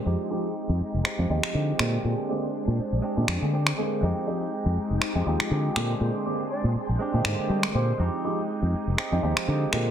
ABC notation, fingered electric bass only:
X:1
M:4/4
L:1/16
Q:"Swing 16ths" 1/4=121
K:Fdor
V:1 name="Fingered electric bass" clef=bass
F,, z4 F,, z F,,, z F,, E,, z D, z B,, z | B,, z4 B,, z B,,, z B,, F,, D,2 z3 | F,, z4 F,, z F,,, z F,, E,, z D, z B,, z | B,, z4 B,, z B,,, z B,, A,, z G, z B,, z |
F,, z4 F,, z F,,, z F,, E,, z D, z B,, z |]